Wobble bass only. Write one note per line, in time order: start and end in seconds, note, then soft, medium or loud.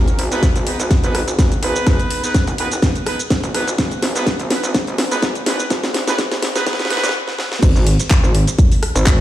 0.00 0.29 G#1 medium
0.32 0.53 G#1 medium
0.56 0.78 G#1 medium
0.80 1.13 G#1 loud
1.15 1.37 G#1 medium
1.39 1.61 G#1 loud
1.63 1.98 G#1 loud
2.48 2.93 F#1 loud
3.44 3.65 G#1 loud
3.67 3.77 G#1 loud
3.78 4.13 G#1 loud
4.15 4.37 G#1 loud
4.39 4.61 G#1 medium
4.63 4.97 G#1 loud
4.98 5.21 G#1 loud
5.22 5.45 G#1 loud
5.46 5.81 G#1 loud
5.83 6.29 G#1 medium
6.32 6.53 G#1 loud
7.04 7.15 A#1 medium
7.63 7.74 G#1 loud
7.76 7.97 G#1 loud
8.24 8.45 G#1 loud
8.95 9.21 G#1 loud